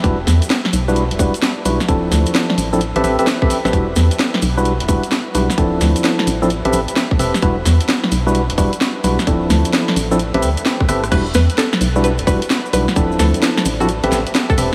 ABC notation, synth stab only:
X:1
M:4/4
L:1/16
Q:"Swing 16ths" 1/4=130
K:Ephr
V:1 name="Synth stab"
[G,DE^FB] z6 [G,DEFB] z2 [G,DEFB] z3 [G,DEFB] z | [F,CDEA]6- [F,CDEA] [F,CDEA] z [CGABe] [CGABe] [CGABe] z [CGABe] z [CGABe] | [G,DE^FB] z6 [G,DEFB] z2 [G,DEFB] z3 [G,DEFB] z | [F,CDEA]6- [F,CDEA] [F,CDEA] z [CGABe] z4 [CGABe] z |
[G,DE^FB] z6 [G,DEFB] z2 [G,DEFB] z3 [G,DEFB] z | [F,CDEA]6- [F,CDEA] [F,CDEA] z [CGABe] z4 [CGABe] z | [G,DE^FB] z6 [G,DEFB] z2 [G,DEFB] z3 [G,DEFB] z | [F,CDEA]6- [F,CDEA] [F,CDEA] z [CGABe] z4 [CGABe] z |]